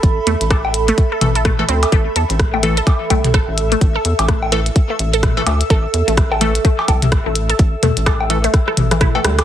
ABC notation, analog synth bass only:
X:1
M:4/4
L:1/16
Q:"Swing 16ths" 1/4=127
K:Clyd
V:1 name="Analog synth bass" clef=bass
A,,, z E,, A,,,4 z3 A,,,3 z D,, z | A,,, z E,, A,,,4 z3 C,,2 G,,, A,,,2 z | A,,, z E,, A,,,4 z3 A,,,3 z D,, z | A,,, z E,, A,,,4 z3 C,,2 G,,, A,,,2 z |
A,,, z E,, A,,,4 z3 A,,,3 z D,, z |]